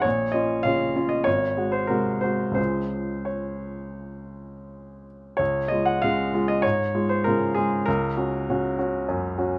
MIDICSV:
0, 0, Header, 1, 2, 480
1, 0, Start_track
1, 0, Key_signature, -5, "major"
1, 0, Tempo, 617284
1, 37, Time_signature, 4, 2, 24, 8
1, 1478, Tempo, 674157
1, 1958, Tempo, 705882
1, 3878, Tempo, 617920
1, 6278, Tempo, 595829
1, 7163, End_track
2, 0, Start_track
2, 0, Title_t, "Grand piano"
2, 0, Program_c, 0, 0
2, 0, Control_c, 0, 64, 127
2, 13, Note_on_c, 0, 73, 68
2, 32, Note_on_c, 0, 34, 50
2, 50, Control_c, 0, 64, 0
2, 185, Control_c, 0, 64, 127
2, 246, Note_on_c, 0, 75, 63
2, 257, Note_off_c, 0, 73, 0
2, 259, Note_off_c, 0, 34, 0
2, 264, Note_on_c, 0, 61, 34
2, 265, Note_on_c, 0, 65, 40
2, 475, Note_off_c, 0, 61, 0
2, 476, Note_off_c, 0, 65, 0
2, 490, Note_off_c, 0, 75, 0
2, 490, Note_on_c, 0, 77, 67
2, 505, Note_on_c, 0, 49, 41
2, 511, Note_on_c, 0, 61, 38
2, 511, Note_on_c, 0, 65, 46
2, 717, Note_off_c, 0, 49, 0
2, 720, Note_off_c, 0, 61, 0
2, 720, Note_off_c, 0, 65, 0
2, 743, Note_on_c, 0, 61, 36
2, 750, Note_on_c, 0, 65, 38
2, 846, Note_on_c, 0, 75, 58
2, 854, Note_off_c, 0, 77, 0
2, 960, Note_off_c, 0, 61, 0
2, 964, Note_off_c, 0, 65, 0
2, 964, Note_on_c, 0, 73, 69
2, 975, Note_off_c, 0, 75, 0
2, 984, Note_on_c, 0, 32, 50
2, 996, Control_c, 0, 64, 0
2, 1105, Control_c, 0, 64, 127
2, 1219, Note_on_c, 0, 56, 32
2, 1223, Note_off_c, 0, 32, 0
2, 1229, Note_on_c, 0, 66, 36
2, 1336, Note_on_c, 0, 72, 55
2, 1344, Note_off_c, 0, 73, 0
2, 1448, Note_off_c, 0, 56, 0
2, 1453, Note_off_c, 0, 66, 0
2, 1457, Note_on_c, 0, 70, 56
2, 1470, Note_off_c, 0, 72, 0
2, 1473, Note_on_c, 0, 48, 33
2, 1476, Note_on_c, 0, 56, 34
2, 1481, Note_on_c, 0, 66, 37
2, 1686, Note_off_c, 0, 48, 0
2, 1688, Note_off_c, 0, 56, 0
2, 1690, Note_off_c, 0, 66, 0
2, 1698, Note_on_c, 0, 72, 53
2, 1702, Note_off_c, 0, 70, 0
2, 1713, Note_on_c, 0, 56, 29
2, 1718, Note_on_c, 0, 66, 32
2, 1916, Note_on_c, 0, 37, 36
2, 1921, Note_off_c, 0, 56, 0
2, 1925, Note_on_c, 0, 49, 28
2, 1926, Note_off_c, 0, 72, 0
2, 1932, Note_on_c, 0, 56, 31
2, 1937, Note_off_c, 0, 66, 0
2, 1937, Note_on_c, 0, 72, 55
2, 1941, Note_on_c, 0, 65, 28
2, 1974, Control_c, 0, 64, 0
2, 2106, Control_c, 0, 64, 127
2, 2417, Note_on_c, 0, 73, 40
2, 2431, Note_off_c, 0, 72, 0
2, 3641, Note_off_c, 0, 73, 0
2, 3830, Note_off_c, 0, 37, 0
2, 3835, Note_off_c, 0, 49, 0
2, 3838, Note_off_c, 0, 56, 0
2, 3842, Note_off_c, 0, 65, 0
2, 3857, Note_on_c, 0, 73, 68
2, 3872, Note_on_c, 0, 37, 49
2, 3891, Control_c, 0, 64, 0
2, 4025, Control_c, 0, 64, 127
2, 4100, Note_on_c, 0, 75, 66
2, 4111, Note_off_c, 0, 73, 0
2, 4113, Note_off_c, 0, 37, 0
2, 4120, Note_on_c, 0, 56, 34
2, 4126, Note_on_c, 0, 65, 35
2, 4233, Note_on_c, 0, 78, 61
2, 4234, Note_off_c, 0, 75, 0
2, 4341, Note_off_c, 0, 56, 0
2, 4344, Note_off_c, 0, 65, 0
2, 4359, Note_on_c, 0, 77, 73
2, 4361, Note_off_c, 0, 78, 0
2, 4371, Note_on_c, 0, 56, 39
2, 4376, Note_on_c, 0, 49, 39
2, 4379, Note_on_c, 0, 65, 40
2, 4586, Note_off_c, 0, 56, 0
2, 4589, Note_off_c, 0, 49, 0
2, 4590, Note_off_c, 0, 65, 0
2, 4606, Note_on_c, 0, 56, 38
2, 4611, Note_on_c, 0, 65, 39
2, 4719, Note_on_c, 0, 75, 68
2, 4722, Note_off_c, 0, 77, 0
2, 4820, Note_off_c, 0, 56, 0
2, 4823, Note_off_c, 0, 65, 0
2, 4828, Note_on_c, 0, 73, 72
2, 4841, Note_off_c, 0, 75, 0
2, 4851, Note_on_c, 0, 44, 44
2, 4858, Control_c, 0, 64, 0
2, 4973, Control_c, 0, 64, 127
2, 5077, Note_off_c, 0, 44, 0
2, 5081, Note_on_c, 0, 56, 39
2, 5081, Note_on_c, 0, 65, 37
2, 5192, Note_off_c, 0, 73, 0
2, 5194, Note_on_c, 0, 72, 63
2, 5297, Note_off_c, 0, 56, 0
2, 5297, Note_off_c, 0, 65, 0
2, 5310, Note_on_c, 0, 70, 72
2, 5318, Note_off_c, 0, 72, 0
2, 5333, Note_on_c, 0, 49, 40
2, 5334, Note_on_c, 0, 56, 37
2, 5334, Note_on_c, 0, 65, 41
2, 5544, Note_off_c, 0, 49, 0
2, 5545, Note_off_c, 0, 56, 0
2, 5545, Note_off_c, 0, 65, 0
2, 5545, Note_on_c, 0, 68, 65
2, 5556, Note_off_c, 0, 70, 0
2, 5566, Note_on_c, 0, 56, 39
2, 5567, Note_on_c, 0, 65, 40
2, 5778, Note_off_c, 0, 56, 0
2, 5779, Note_off_c, 0, 65, 0
2, 5787, Note_on_c, 0, 70, 72
2, 5792, Note_off_c, 0, 68, 0
2, 5806, Note_on_c, 0, 37, 59
2, 5812, Control_c, 0, 64, 0
2, 5958, Control_c, 0, 64, 127
2, 6032, Note_on_c, 0, 66, 38
2, 6035, Note_off_c, 0, 37, 0
2, 6035, Note_on_c, 0, 61, 37
2, 6250, Note_off_c, 0, 66, 0
2, 6251, Note_off_c, 0, 61, 0
2, 6283, Note_on_c, 0, 49, 45
2, 6286, Note_on_c, 0, 61, 44
2, 6287, Note_on_c, 0, 66, 47
2, 6498, Note_off_c, 0, 49, 0
2, 6499, Note_off_c, 0, 61, 0
2, 6500, Note_off_c, 0, 66, 0
2, 6517, Note_on_c, 0, 61, 39
2, 6520, Note_on_c, 0, 66, 43
2, 6731, Note_off_c, 0, 61, 0
2, 6733, Note_off_c, 0, 66, 0
2, 6759, Note_on_c, 0, 42, 51
2, 6990, Note_off_c, 0, 42, 0
2, 6999, Note_on_c, 0, 61, 39
2, 7000, Note_on_c, 0, 66, 39
2, 7163, Note_off_c, 0, 61, 0
2, 7163, Note_off_c, 0, 66, 0
2, 7163, Note_off_c, 0, 70, 0
2, 7163, End_track
0, 0, End_of_file